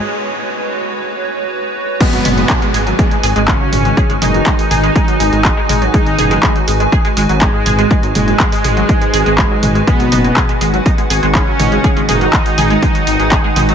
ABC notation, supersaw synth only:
X:1
M:4/4
L:1/8
Q:1/4=122
K:G#m
V:1 name="Supersaw synth"
z8 | B,3 z3 C2- | C D6- D | D3 z3 G,2- |
G, G,6- G, | B,3 z3 C2- | C D6- D |]